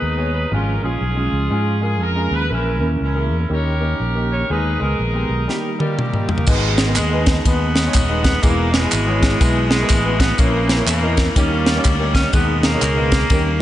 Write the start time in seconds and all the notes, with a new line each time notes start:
Already playing: D#3 G#3 B3 D#4 G#4 B4
0.02 D#2
0.17 B3 D#4 G#4 C#5
0.34 B4
0.51 G#1 G#2 F3 G#3 C#4 F4 G4 G#4 A#4
0.57 G#4
0.82 A#1 G#3 C#4 F4 G#4
1.01 B1
1.16 G#3 C#4 F4 G#4
1.32 C#2
1.50 G#2 G#3 C#4 F4 G#4
1.81 G#3 C#4 F4 G#4 A#4
2.00 F2 A#4
2.16 G#3 C#4 F4 G#4
2.31 D#2 B4
2.49 A#1 A#2 E3 A#3 C#4 E4 A#4
2.80 D#2 A#3 C#4 E4 A#4
3.01 C#2 C#4 E4 A#4
3.14 A#3 C#4 E4 G#4
3.32 E2
3.49 D#2 D#3 A#3 C#4 D#4 G4 A#4
3.54 C#5
3.80 A#3 C#4 D#4 A#4
4.00 A#1
4.15 A#3 C#4 D#4 G4
4.32 C#5
4.49 D#2 D#3 G#3 B3 D#4 G#4 B4
4.80 C#2 G#3 B3 D#4 G#4 A#4
4.99 A#1
5.14 G#3 B3 D#4 G4
5.29 B1
5.48 D#3 G3 A#3 D#4 E4 G4, snare
5.55 G4
5.79 A#2 D#3 G3 A#3 D#4 G4 A#4, high tom
5.99 mid tom
6.13 G3 A#3 D#4 G4, mid tom
6.29 A#3 A#4, floor tom
6.38 floor tom
6.47 G#1 G#2 B2 D#3 G#3 B3 D#4 G#4 B4, kick, crash, tambourine
6.78 snare, ride bell, tambourine
6.87 G#3 B3 D#4 G#4 A#4
6.96 D#2 B2 D#3 G#3, clap, ride bell, tambourine
7.11 G#3 B3 D#4 G#4 B4
7.26 kick, snare, ride bell, tambourine
7.45 D#2 D#3 G#3 B3 D#4 G#4 B4, kick, ride bell, tambourine
7.76 snare, ride bell, tambourine
7.86 G#3 B3 D#4 G#4 C#5
7.94 D#1, kick, clap, ride bell, tambourine
8.09 G#3 B3 D#4 G#4 B4
8.23 B3, kick, snare, ride bell, tambourine
8.42 E1 E3 G#3 A#3 B3 D#4 E4 G#4 B4, kick, ride bell, tambourine
8.51 E4
8.72 B2 E3 G#3, snare, ride bell, tambourine
8.82 G#3 B3 E4 G#4 B4
8.92 G#1, clap, ride bell, tambourine
9.06 G#3 B3 E4 G#4 C#5
9.23 kick, snare, ride bell, tambourine
9.40 B1 G#3 B3 E4 G#4 B4, kick, ride bell, tambourine
9.70 B2 E3 G#3, snare, ride bell, tambourine
9.80 G#3 B3 E4 G#4 A#4
9.89 A1, kick, clap, ride bell, tambourine
10.04 G#3 B3 E4 G#4 B4
10.19 B3, kick, snare, ride bell, tambourine
10.38 A#1 A#2 C#3 E3 A#3 C#4 E4 A#4 C#5, kick, ride bell, tambourine
10.69 snare, ride bell, tambourine
10.77 A#3 C#4 E4 A#4 C#5
10.86 E2 C#3 E3 A#3, clap, ride bell, tambourine
11.02 A#3 C#4 E4 A#4 D#5
11.17 kick, snare, ride bell, tambourine
11.35 D#2 D#3 G3 A#3 C#4 D#4 G4 A#4, kick, ride bell, tambourine
11.66 snare, ride bell, tambourine
11.75 A#3 C#4 D#4 G4 C#5
11.84 D2, kick, clap, ride bell, tambourine
11.99 A#3 C#4 D#4 G4 C#5
12.15 C#4, kick, snare, ride bell, tambourine
12.33 D#2 B2 D#3 G#3 B3 D#4 G#4 B4, kick, ride bell, tambourine
12.63 D#3 A#3, snare, ride bell, tambourine
12.73 G#3 B3 D#4 G#4 C#5
12.81 C#2, clap, ride bell, tambourine
12.97 G#3 B3 D#4 G#4 B4
13.12 kick, snare, ride bell, tambourine
13.30 D#2 D#3 G3 A#3 C#4 D#4 G4 A#4, kick, ride bell, tambourine